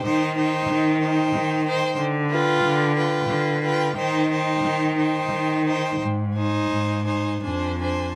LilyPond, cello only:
\new Staff \with { instrumentName = "Cello" } { \clef bass \time 3/4 \key c \minor \tempo 4 = 90 ees4 ees4 ees4 | d4 d4 d4 | ees4 ees4 ees4 | aes,4 aes,4 f,4 | }